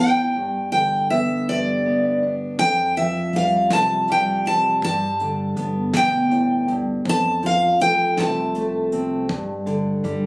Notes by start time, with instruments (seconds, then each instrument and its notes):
Already playing: steel-string acoustic guitar E3 B3
0.00 steel-string acoustic guitar A2 G5
0.36 steel-string acoustic guitar G2
0.72 steel-string acoustic guitar D3 G5
1.10 steel-string acoustic guitar B3 E5
1.49 steel-string acoustic guitar G2 D5
1.86 steel-string acoustic guitar B3
2.23 steel-string acoustic guitar D4
2.59 upright bass F2, steel-string acoustic guitar F2 G5, kick, closed hi-hat
2.96 steel-string acoustic guitar F3 E5, closed hi-hat
3.33 upright bass F2, steel-string acoustic guitar G3 F5, closed hi-hat
3.70 upright bass C2, steel-string acoustic guitar C3 A5, snare, closed hi-hat
4.08 steel-string acoustic guitar G3 G5, closed hi-hat
4.45 steel-string acoustic guitar C4 A5, closed hi-hat
4.82 upright bass G2, steel-string acoustic guitar G2 A5, kick, closed hi-hat
5.20 steel-string acoustic guitar D3, closed hi-hat
5.56 upright bass G2, steel-string acoustic guitar B3, closed hi-hat
5.93 upright bass D2, steel-string acoustic guitar B2 G5, snare, closed hi-hat
6.30 steel-string acoustic guitar A2, closed hi-hat
6.67 steel-string acoustic guitar G2, closed hi-hat
7.05 steel-string acoustic guitar F2, upright bass F2, kick, closed hi-hat
7.09 steel-string acoustic guitar A5
7.43 steel-string acoustic guitar F3 F5, closed hi-hat
7.80 upright bass F2, steel-string acoustic guitar A3 G5, closed hi-hat
8.17 upright bass C2, steel-string acoustic guitar C3 A5, snare, closed hi-hat
8.55 steel-string acoustic guitar A3, closed hi-hat
8.92 steel-string acoustic guitar C4, closed hi-hat
9.29 steel-string acoustic guitar G2, upright bass G2, kick, closed hi-hat
9.66 steel-string acoustic guitar D3, closed hi-hat
10.04 upright bass G2, steel-string acoustic guitar G3, closed hi-hat